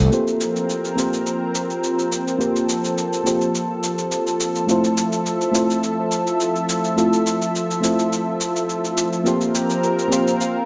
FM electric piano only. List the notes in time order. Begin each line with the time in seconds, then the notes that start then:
Already playing: A3 C4 F4 C5 E5
0.10 A#3 C4 F4 G4 C5
0.96 A#3 C4 F4 G4 C5
2.39 A#3 C4 F4 G4 A#4
3.24 A#3 C4 F4 G4 C5
4.67 A3 C4 E4 F4 C5
5.52 A3 C4 E4 F4
5.56 C5
6.96 A3 C4 E4 F4 A4
7.80 A3 C4 E4 F4 C5
9.24 A#3 C4 F4 G4 C5
10.08 A#3 C4 F4 G4
10.12 C5